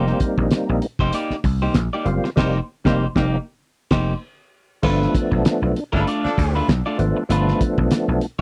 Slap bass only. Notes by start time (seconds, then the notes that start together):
Already playing: F1
0.38 A#1
0.69 A#1
0.99 F1
1.30 muted slap bass stroke
1.44 C2
1.75 A#1
2.05 F#1
2.37 F1
2.85 F1
3.16 F1
3.91 F1
4.83 G1
5.32 B1
5.62 B1
5.93 G1
6.25 muted slap bass stroke
6.38 D2
6.68 B1
6.99 G#1
7.29 G1
7.78 B1
8.08 B1